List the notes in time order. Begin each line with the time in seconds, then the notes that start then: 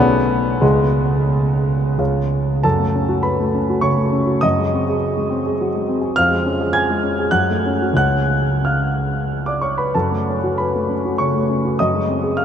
Already playing: B1 B3 G#4 D5 F#5
0.61 C#2 G#3 G#4 C#5 F#5
1.98 C#2 G#4 C#5 F5
2.63 F#2 A4 A5
2.79 A3
2.95 C#4
3.09 F#4
3.23 B4 B5
3.40 A3
3.54 C#4
3.70 F#4
3.81 C#3 C#5 C#6
3.97 A3
4.12 C#4
4.27 F#4
4.41 F#2 D#5 D#6
4.59 G#3
4.72 C4
4.89 G#4
5.17 G#3
5.30 C4
5.46 G#4
5.61 F#3
5.75 G#3
5.89 C4
6.01 G#4
6.16 F2 F5 F6
6.31 G#3
6.46 C#4
6.61 G#4
6.73 G#5 G#6
6.90 G#3
7.03 C#4
7.19 G#4
7.31 F#2 F#5 F#6
7.50 A3
7.66 C#4
7.82 F#4
7.93 C#2 G#3 C#4 G#4 F#6
7.98 F#5
8.65 F5 F6
9.46 D5 D6
9.61 C#5 C#6
9.78 B4 B5
9.95 F#2 A4 A5
10.12 A3
10.29 C#4
10.44 F#4
10.58 B4 B5
10.76 A3
10.89 C#4
11.05 F#4
11.18 C#3 C#5 C#6
11.36 A3
11.49 C#4
11.65 F#4
11.79 F#2 D#5 D#6
11.94 G#3
12.08 C4
12.23 G#4
12.37 F5 F6